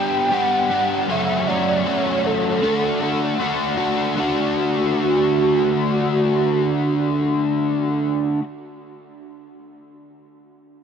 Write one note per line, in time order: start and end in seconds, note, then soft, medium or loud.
0.00 0.30 G3 medium
0.00 0.30 B3 medium
0.00 0.31 D4 medium
0.00 0.32 G4 medium
0.00 0.35 G5 loud
0.31 0.71 G3 medium
0.31 0.71 B3 medium
0.31 0.70 D4 medium
0.31 0.69 G4 medium
0.31 1.13 F#5 loud
0.70 1.08 G3 medium
0.70 1.07 B3 medium
0.70 1.07 D4 medium
0.70 1.06 G4 medium
1.08 1.85 F#2 loud
1.08 1.86 C#3 loud
1.08 1.49 F#3 loud
1.08 1.48 A3 loud
1.08 1.47 C#4 loud
1.08 1.46 F#4 loud
1.08 1.47 E5 loud
1.47 1.83 F#3 medium
1.47 1.85 A3 medium
1.47 1.86 C#4 medium
1.47 1.86 F#4 medium
1.47 1.89 D5 medium
1.85 2.60 F#3 medium
1.85 2.61 A3 medium
1.85 2.61 C#4 medium
1.85 2.61 F#4 medium
1.85 2.28 C#5 medium
2.26 3.41 A4 loud
2.62 3.38 D3 loud
2.62 3.02 A3 loud
2.62 3.01 D4 medium
2.62 2.99 F#4 loud
3.00 3.39 A3 medium
3.00 3.40 D4 medium
3.00 3.41 F#4 medium
3.39 4.14 D3 medium
3.39 3.78 A3 medium
3.39 3.78 D4 medium
3.39 3.76 F#4 medium
3.77 4.15 A3 medium
3.77 4.15 D4 medium
3.77 4.14 F#4 medium
4.16 8.39 D3 loud
4.16 8.40 A3 loud
4.16 8.41 D4 loud
4.16 8.00 F#4 loud
4.20 8.43 F#4 loud